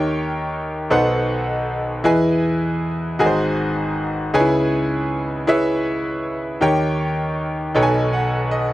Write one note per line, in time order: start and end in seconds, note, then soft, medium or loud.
0.00 0.87 D#2 medium
0.00 0.87 D#3 medium
0.00 0.57 D#4 medium
0.00 0.57 G4 medium
0.00 0.57 A#4 medium
0.00 0.57 C#5 medium
0.00 0.61 G5 medium
0.90 2.01 B1 medium
0.90 2.01 B2 medium
0.90 1.71 D#4 medium
0.90 1.71 A4 medium
0.90 1.72 B4 medium
0.90 1.72 C5 medium
0.90 1.72 F#5 medium
2.04 3.15 E2 medium
2.04 3.15 E3 medium
2.04 2.85 E4 medium
2.04 2.86 G#4 medium
2.04 2.86 B4 medium
2.04 2.86 D#5 medium
2.04 2.86 G#5 medium
3.19 4.30 G#1 medium
3.19 4.30 G#2 medium
3.19 4.00 F#4 medium
3.19 4.00 G#4 medium
3.19 3.26 A#4 medium
3.19 4.00 D#5 medium
3.19 4.01 G#5 medium
3.26 4.03 C5 medium
4.34 6.58 C#2 medium
4.34 6.58 C#3 medium
4.34 4.40 D#4 medium
4.34 5.14 G#4 medium
4.34 5.14 B4 medium
4.34 5.14 C#5 medium
4.34 5.15 G#5 medium
4.40 5.17 E4 medium
5.47 6.28 E4 medium
5.47 6.28 G#4 medium
5.47 6.28 B4 medium
5.47 6.29 C#5 medium
5.47 6.29 E5 loud
6.61 7.71 D#2 medium
6.61 7.71 D#3 medium
6.61 7.42 D#4 medium
6.61 7.42 G4 medium
6.61 7.42 A#4 medium
6.61 7.42 C#5 medium
6.61 7.42 G5 loud
7.75 8.73 B1 medium
7.75 8.73 B2 medium
7.75 8.56 D#4 medium
7.75 8.56 A4 medium
7.75 8.56 B4 medium
7.75 8.56 C#5 medium
7.75 7.82 G5 medium
7.83 8.60 G#5 medium
8.13 8.49 F#5 medium
8.51 8.73 D#5 medium